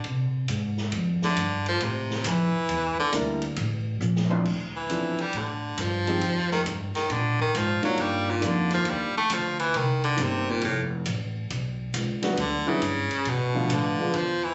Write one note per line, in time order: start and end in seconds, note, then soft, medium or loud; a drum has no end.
0.04 0.48 C3 medium
0.04 kick soft
0.04 ride medium
0.48 0.92 G#2 loud
0.48 kick soft
0.48 hi-hat pedal medium
0.48 ride medium
0.78 snare soft
0.92 1.36 F2 medium
0.92 kick soft
0.92 ride medium
1.22 1.64 D3 medium
1.22 snare medium
1.36 1.79 G2 loud
1.36 kick soft
1.36 hi-hat pedal medium
1.36 ride medium
1.66 1.85 F3 loud
1.66 ride medium
1.80 2.24 A2 loud
1.80 2.29 C3 medium
1.80 kick soft
1.80 ride medium
2.11 snare soft
2.24 2.52 F2 loud
2.24 2.99 E3 loud
2.24 kick soft
2.24 hi-hat pedal medium
2.24 ride medium
2.54 muted upright bass stroke soft
2.69 2.96 E2 medium
2.69 kick soft
2.69 ride medium
2.98 3.13 D3 loud
2.98 muted upright bass stroke soft
3.12 3.56 D2 loud
3.12 3.39 G3 medium
3.12 3.39 A#3 medium
3.12 3.39 D4 medium
3.12 3.40 E4 medium
3.12 3.40 A#4 medium
3.12 kick soft
3.12 hi-hat pedal medium
3.12 ride medium
3.42 ride medium
3.56 4.00 A1 loud
3.56 kick soft
3.56 ride medium
4.01 4.44 A#1 loud
4.01 hi-hat pedal medium
4.16 snare medium
4.30 4.44 F3 medium
4.30 4.44 C4 medium
4.30 4.44 D4 medium
4.30 4.44 E4 medium
4.30 4.44 C5 medium
4.30 mid tom medium
4.45 4.89 D2 medium
4.45 kick medium
4.45 crash medium
4.76 5.23 E3 loud
4.89 5.17 E2 loud
4.89 5.16 F3 medium
4.89 5.16 C4 medium
4.89 5.16 D4 medium
4.89 5.16 E4 medium
4.89 5.16 A4 medium
4.89 kick soft
4.89 hi-hat pedal medium
4.89 ride medium
5.18 5.39 G3 loud
5.18 muted upright bass stroke soft
5.18 ride medium
5.33 5.77 A2 medium
5.33 kick soft
5.33 ride medium
5.38 5.83 D3 medium
5.78 6.21 G2 loud
5.78 6.52 F3 loud
5.78 kick soft
5.78 hi-hat pedal medium
5.78 ride medium
6.07 6.21 F3 medium
6.07 6.21 G#3 medium
6.07 6.21 C4 medium
6.07 6.21 D#4 medium
6.07 6.21 G4 medium
6.07 ride medium
6.21 6.65 F2 medium
6.21 kick soft
6.21 ride medium
6.51 6.61 D#3 loud
6.51 snare medium
6.66 6.93 G2 loud
6.66 kick soft
6.66 hi-hat pedal medium
6.66 ride medium
6.95 7.13 D#3 medium
6.95 snare soft
6.95 ride medium
7.10 7.53 A#2 loud
7.10 7.40 D3 medium
7.10 kick soft
7.10 ride medium
7.40 7.58 D#3 loud
7.40 kick medium
7.54 7.82 G#2 loud
7.54 7.84 F3 medium
7.54 kick soft
7.54 hi-hat pedal medium
7.54 ride medium
7.82 8.39 D#3 medium
7.82 8.03 F#3 medium
7.82 8.39 G3 medium
7.82 8.39 A#3 medium
7.82 8.39 D4 medium
7.82 8.40 F4 medium
7.82 ride medium
7.98 8.41 G2 medium
7.98 8.32 G3 medium
7.98 kick soft
7.98 ride medium
8.30 8.48 A#2 medium
8.41 8.85 F2 loud
8.41 9.09 D#3 medium
8.41 9.09 G3 medium
8.41 9.09 A#3 medium
8.41 9.10 D4 medium
8.41 9.10 F4 medium
8.41 kick soft
8.41 hi-hat pedal medium
8.41 ride medium
8.46 8.74 D3 medium
8.71 8.92 F3 loud
8.71 snare soft
8.71 ride medium
8.85 9.13 D#2 loud
8.85 kick soft
8.85 ride medium
8.90 9.17 G3 medium
9.15 9.35 A3 loud
9.15 muted upright bass stroke soft
9.30 9.73 D2 loud
9.30 9.59 F3 loud
9.30 kick soft
9.30 hi-hat pedal medium
9.30 ride medium
9.59 9.78 E3 loud
9.59 ride medium
9.74 10.17 C2 medium
9.74 10.04 D#3 medium
9.74 kick soft
9.74 ride medium
10.04 10.24 D3 loud
10.04 ride medium
10.17 10.61 G1 loud
10.17 10.62 D#3 medium
10.17 10.62 G3 medium
10.17 10.62 A#3 medium
10.17 10.62 C4 medium
10.17 10.62 G4 medium
10.17 kick soft
10.17 hi-hat pedal medium
10.17 ride medium
10.23 10.52 C3 medium
10.51 10.64 A#2 medium
10.61 11.05 F1 medium
10.61 10.82 A2 medium
10.61 kick soft
10.61 ride medium
11.06 11.49 A1 loud
11.06 kick soft
11.06 hi-hat pedal medium
11.06 ride medium
11.50 11.93 B1 medium
11.50 kick soft
11.50 ride medium
11.94 12.37 C#2 loud
11.94 kick soft
11.94 hi-hat pedal medium
11.94 ride medium
12.22 12.36 D3 medium
12.22 12.36 F#3 medium
12.22 12.37 G3 medium
12.22 12.37 B3 medium
12.22 12.37 F#4 medium
12.22 snare medium
12.22 ride medium
12.37 12.65 D2 loud
12.37 12.70 D3 medium
12.37 kick soft
12.37 ride medium
12.66 13.31 C#3 medium
12.66 12.80 D3 medium
12.66 12.81 F#3 medium
12.66 12.81 G3 medium
12.66 12.80 B3 medium
12.66 12.81 E4 medium
12.66 muted upright bass stroke soft
12.82 13.09 G2 loud
12.82 kick soft
12.82 hi-hat pedal medium
12.82 ride medium
13.11 ride medium
13.25 13.69 B2 loud
13.25 kick soft
13.25 ride medium
13.29 13.76 B2 medium
13.54 13.96 D3 medium
13.54 13.96 F3 medium
13.54 13.96 A3 medium
13.54 13.97 B3 medium
13.54 13.96 F4 medium
13.70 13.97 A2 medium
13.70 kick soft
13.70 hi-hat pedal medium
13.70 ride medium
13.74 14.18 D3 loud
13.99 14.12 D3 medium
13.99 14.13 F3 medium
13.99 14.13 G#3 medium
13.99 14.13 B3 medium
13.99 14.13 F4 medium
14.14 14.54 E2 loud
14.14 14.46 F3 loud
14.14 kick soft
14.14 ride medium
14.44 14.54 E3 loud